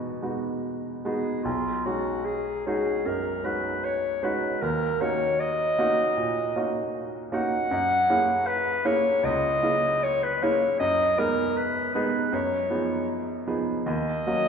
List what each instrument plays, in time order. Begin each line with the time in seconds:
Already playing: grand piano E2 B2 G#3 B3 D#4 F#4, clarinet F#4
0.22 grand piano G#3 B3 D#4 F#4
1.04 grand piano G#3 B3 D#4 F#4, clarinet G#4
1.43 grand piano B1, clarinet F4
1.85 grand piano G#3 C#4 D#4 F#4, clarinet F#4
2.25 clarinet G#4
2.67 grand piano G#3 C#4 D#4 F#4, clarinet G#4
3.06 grand piano F#2, clarinet A#4
3.44 grand piano G#3 C#4 D#4 F#4, clarinet B4
3.84 clarinet C#5
4.23 grand piano G#3 C#4 D#4 F#4, clarinet B4
4.62 grand piano D#2, clarinet A#4
5.01 grand piano A#3 C#4 D#4 F#4, clarinet C#5
5.40 clarinet D#5
5.79 grand piano A#3 C#4 D#4 F#4
6.17 grand piano A#2
6.56 grand piano A#3 C#4 D#4 F#4
7.32 grand piano A#3 C#4 D#4 F#4, clarinet F#5
7.71 grand piano F#2
8.10 grand piano A#3 C#4 E4 G#4
8.47 clarinet B4
8.85 grand piano A#3 C#4 E4 G#4, clarinet C#5
9.23 grand piano C#2, clarinet D#5
9.62 grand piano A#3 C#4 E4 G#4
10.03 clarinet C#5
10.23 clarinet B4
10.42 grand piano A#3 C#4 E4 G#4, clarinet C#5
10.79 grand piano F#2, clarinet D#5
11.18 grand piano G#3 B3 D#4 G#4, clarinet A#4
11.57 clarinet B4
11.94 grand piano G#3 B3 D#4 G#4, clarinet B4
12.32 grand piano F#2, clarinet C#5
12.70 grand piano F3 B3 D#4 G#4
13.47 grand piano F3 B3 D#4 G#4
13.86 grand piano D#2, clarinet D#5
14.27 grand piano F#3 A#3 C#4 F#4